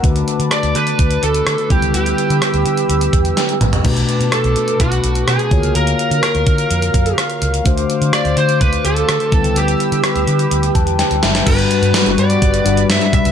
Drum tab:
CC |----------------|----------------|x---------------|----------------|
HH |xxxxxxxxxxxxxxxx|xxxxxxxxxxxxxxxx|-xxxxxxxxxxxxxxx|xxxxxxxxxxxxxxxx|
SD |----r-------r---|----r-------o---|----r-------r---|----r-------r---|
T2 |----------------|--------------o-|----------------|----------------|
FT |----------------|---------------o|----------------|----------------|
BD |o-------o-----o-|----------o-----|o-------o-----o-|------o---o-----|

CC |----------------|----------------|x---------------|
HH |xxxxxxxxxxxxxxxx|xxxxxxxxxxxxxxxx|xxxxxxxxxxxxxxxx|
SD |----r-------r---|----r-------o-oo|----o-------o---|
T2 |----------------|----------------|----------------|
FT |----------------|----------------|----------------|
BD |o-------o-----o-|----------o-----|o-------o-----o-|